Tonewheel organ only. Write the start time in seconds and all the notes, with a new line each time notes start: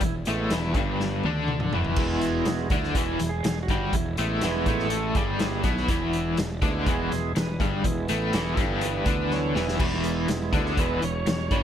0.05 E4
0.27 G#3 B3 E4
1.99 G#3 B3 E4
2.23 F#4
2.72 E4
3.29 G#4
3.63 F#4
3.95 E4
4.18 G#3 B3 E4
4.45 B4
4.68 A4
5.15 G#4
5.39 G#3 B3 E4
5.65 E4
6.62 G#3 B3 E4
6.89 G#4
7.36 B4
7.60 G#4
7.84 E3 G#3 B3 E4
8.35 A4
8.83 B4
9.33 C#5
9.57 B4
10.04 G#3 B3 E4
10.55 A4
10.78 G#3 B3 E4 B4
11.04 C#5